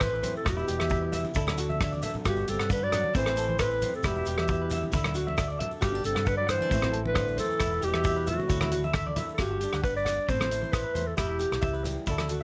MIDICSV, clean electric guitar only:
0, 0, Header, 1, 3, 480
1, 0, Start_track
1, 0, Key_signature, 1, "major"
1, 0, Tempo, 446761
1, 496, Time_signature, 4, 2, 24, 8
1, 13355, End_track
2, 0, Start_track
2, 0, Title_t, "Clean electric guitar"
2, 0, Program_c, 0, 27
2, 27, Note_on_c, 0, 72, 82
2, 114, Note_off_c, 0, 72, 0
2, 137, Note_on_c, 0, 71, 69
2, 221, Note_off_c, 0, 71, 0
2, 240, Note_on_c, 0, 72, 71
2, 337, Note_off_c, 0, 72, 0
2, 611, Note_on_c, 0, 64, 76
2, 698, Note_off_c, 0, 64, 0
2, 727, Note_on_c, 0, 67, 71
2, 822, Note_off_c, 0, 67, 0
2, 850, Note_on_c, 0, 76, 63
2, 938, Note_off_c, 0, 76, 0
2, 971, Note_on_c, 0, 76, 75
2, 1065, Note_off_c, 0, 76, 0
2, 1208, Note_on_c, 0, 76, 81
2, 1303, Note_off_c, 0, 76, 0
2, 1462, Note_on_c, 0, 64, 79
2, 1552, Note_off_c, 0, 64, 0
2, 1588, Note_on_c, 0, 64, 67
2, 1670, Note_off_c, 0, 64, 0
2, 1695, Note_on_c, 0, 66, 73
2, 1788, Note_off_c, 0, 66, 0
2, 1821, Note_on_c, 0, 76, 69
2, 1906, Note_off_c, 0, 76, 0
2, 1942, Note_on_c, 0, 76, 88
2, 2032, Note_off_c, 0, 76, 0
2, 2067, Note_on_c, 0, 74, 60
2, 2150, Note_off_c, 0, 74, 0
2, 2178, Note_on_c, 0, 76, 70
2, 2270, Note_off_c, 0, 76, 0
2, 2425, Note_on_c, 0, 66, 80
2, 2515, Note_off_c, 0, 66, 0
2, 2552, Note_on_c, 0, 66, 73
2, 2633, Note_off_c, 0, 66, 0
2, 2669, Note_on_c, 0, 67, 74
2, 2758, Note_off_c, 0, 67, 0
2, 2793, Note_on_c, 0, 78, 60
2, 2874, Note_off_c, 0, 78, 0
2, 2913, Note_on_c, 0, 78, 69
2, 3000, Note_off_c, 0, 78, 0
2, 3035, Note_on_c, 0, 71, 66
2, 3115, Note_off_c, 0, 71, 0
2, 3153, Note_on_c, 0, 78, 83
2, 3240, Note_off_c, 0, 78, 0
2, 3381, Note_on_c, 0, 60, 81
2, 3473, Note_off_c, 0, 60, 0
2, 3515, Note_on_c, 0, 60, 65
2, 3595, Note_off_c, 0, 60, 0
2, 3621, Note_on_c, 0, 69, 73
2, 3713, Note_off_c, 0, 69, 0
2, 3752, Note_on_c, 0, 72, 70
2, 3834, Note_off_c, 0, 72, 0
2, 3870, Note_on_c, 0, 72, 85
2, 3959, Note_off_c, 0, 72, 0
2, 3997, Note_on_c, 0, 71, 70
2, 4077, Note_off_c, 0, 71, 0
2, 4113, Note_on_c, 0, 72, 68
2, 4201, Note_off_c, 0, 72, 0
2, 4353, Note_on_c, 0, 64, 85
2, 4441, Note_off_c, 0, 64, 0
2, 4476, Note_on_c, 0, 64, 81
2, 4556, Note_off_c, 0, 64, 0
2, 4594, Note_on_c, 0, 67, 67
2, 4681, Note_off_c, 0, 67, 0
2, 4713, Note_on_c, 0, 76, 68
2, 4794, Note_off_c, 0, 76, 0
2, 4828, Note_on_c, 0, 76, 72
2, 4918, Note_off_c, 0, 76, 0
2, 4958, Note_on_c, 0, 71, 73
2, 5037, Note_off_c, 0, 71, 0
2, 5074, Note_on_c, 0, 76, 80
2, 5161, Note_off_c, 0, 76, 0
2, 5312, Note_on_c, 0, 64, 81
2, 5400, Note_off_c, 0, 64, 0
2, 5423, Note_on_c, 0, 64, 70
2, 5507, Note_off_c, 0, 64, 0
2, 5533, Note_on_c, 0, 66, 74
2, 5627, Note_off_c, 0, 66, 0
2, 5663, Note_on_c, 0, 76, 69
2, 5747, Note_off_c, 0, 76, 0
2, 5775, Note_on_c, 0, 76, 76
2, 5869, Note_off_c, 0, 76, 0
2, 5888, Note_on_c, 0, 74, 67
2, 5978, Note_off_c, 0, 74, 0
2, 6008, Note_on_c, 0, 76, 74
2, 6104, Note_off_c, 0, 76, 0
2, 6242, Note_on_c, 0, 66, 79
2, 6339, Note_off_c, 0, 66, 0
2, 6360, Note_on_c, 0, 62, 78
2, 6452, Note_off_c, 0, 62, 0
2, 6609, Note_on_c, 0, 78, 66
2, 6698, Note_off_c, 0, 78, 0
2, 6716, Note_on_c, 0, 78, 76
2, 6816, Note_off_c, 0, 78, 0
2, 6848, Note_on_c, 0, 71, 64
2, 6937, Note_off_c, 0, 71, 0
2, 6949, Note_on_c, 0, 78, 86
2, 7051, Note_off_c, 0, 78, 0
2, 7195, Note_on_c, 0, 60, 79
2, 7294, Note_off_c, 0, 60, 0
2, 7316, Note_on_c, 0, 60, 77
2, 7408, Note_off_c, 0, 60, 0
2, 7434, Note_on_c, 0, 69, 76
2, 7533, Note_off_c, 0, 69, 0
2, 7677, Note_on_c, 0, 72, 86
2, 7775, Note_off_c, 0, 72, 0
2, 7919, Note_on_c, 0, 72, 76
2, 8017, Note_off_c, 0, 72, 0
2, 8165, Note_on_c, 0, 64, 83
2, 8260, Note_off_c, 0, 64, 0
2, 8282, Note_on_c, 0, 64, 69
2, 8371, Note_off_c, 0, 64, 0
2, 8396, Note_on_c, 0, 67, 76
2, 8494, Note_off_c, 0, 67, 0
2, 8528, Note_on_c, 0, 76, 61
2, 8615, Note_off_c, 0, 76, 0
2, 8641, Note_on_c, 0, 76, 66
2, 8737, Note_off_c, 0, 76, 0
2, 8770, Note_on_c, 0, 71, 71
2, 8856, Note_off_c, 0, 71, 0
2, 8886, Note_on_c, 0, 76, 76
2, 8980, Note_off_c, 0, 76, 0
2, 9131, Note_on_c, 0, 66, 74
2, 9222, Note_off_c, 0, 66, 0
2, 9258, Note_on_c, 0, 64, 76
2, 9341, Note_off_c, 0, 64, 0
2, 9368, Note_on_c, 0, 66, 77
2, 9461, Note_off_c, 0, 66, 0
2, 9501, Note_on_c, 0, 76, 69
2, 9583, Note_off_c, 0, 76, 0
2, 9616, Note_on_c, 0, 76, 89
2, 9706, Note_off_c, 0, 76, 0
2, 9740, Note_on_c, 0, 74, 75
2, 9822, Note_off_c, 0, 74, 0
2, 9858, Note_on_c, 0, 76, 68
2, 9947, Note_off_c, 0, 76, 0
2, 10094, Note_on_c, 0, 66, 73
2, 10184, Note_off_c, 0, 66, 0
2, 10214, Note_on_c, 0, 66, 68
2, 10298, Note_off_c, 0, 66, 0
2, 10319, Note_on_c, 0, 67, 65
2, 10414, Note_off_c, 0, 67, 0
2, 10458, Note_on_c, 0, 78, 65
2, 10540, Note_off_c, 0, 78, 0
2, 10565, Note_on_c, 0, 78, 68
2, 10658, Note_off_c, 0, 78, 0
2, 10693, Note_on_c, 0, 71, 63
2, 10777, Note_off_c, 0, 71, 0
2, 10798, Note_on_c, 0, 78, 64
2, 10894, Note_off_c, 0, 78, 0
2, 11047, Note_on_c, 0, 60, 75
2, 11139, Note_off_c, 0, 60, 0
2, 11172, Note_on_c, 0, 60, 65
2, 11256, Note_off_c, 0, 60, 0
2, 11407, Note_on_c, 0, 72, 64
2, 11493, Note_off_c, 0, 72, 0
2, 11520, Note_on_c, 0, 72, 81
2, 11615, Note_off_c, 0, 72, 0
2, 11645, Note_on_c, 0, 71, 69
2, 11732, Note_off_c, 0, 71, 0
2, 11760, Note_on_c, 0, 72, 69
2, 11854, Note_off_c, 0, 72, 0
2, 12004, Note_on_c, 0, 64, 75
2, 12097, Note_off_c, 0, 64, 0
2, 12129, Note_on_c, 0, 64, 73
2, 12214, Note_off_c, 0, 64, 0
2, 12241, Note_on_c, 0, 67, 71
2, 12335, Note_off_c, 0, 67, 0
2, 12480, Note_on_c, 0, 76, 69
2, 12575, Note_off_c, 0, 76, 0
2, 12607, Note_on_c, 0, 71, 71
2, 12693, Note_off_c, 0, 71, 0
2, 12970, Note_on_c, 0, 64, 77
2, 13061, Note_off_c, 0, 64, 0
2, 13090, Note_on_c, 0, 64, 69
2, 13175, Note_off_c, 0, 64, 0
2, 13205, Note_on_c, 0, 66, 68
2, 13298, Note_off_c, 0, 66, 0
2, 13355, End_track
3, 0, Start_track
3, 0, Title_t, "Muted clean electric guitar strokes"
3, 483, Note_on_c, 9, 29, 83
3, 590, Note_off_c, 9, 29, 0
3, 1101, Note_on_c, 9, 29, 69
3, 1208, Note_off_c, 9, 29, 0
3, 11285, Note_on_c, 9, 29, 61
3, 11392, Note_off_c, 9, 29, 0
3, 12714, Note_on_c, 9, 29, 70
3, 12821, Note_off_c, 9, 29, 0
3, 13355, End_track
0, 0, End_of_file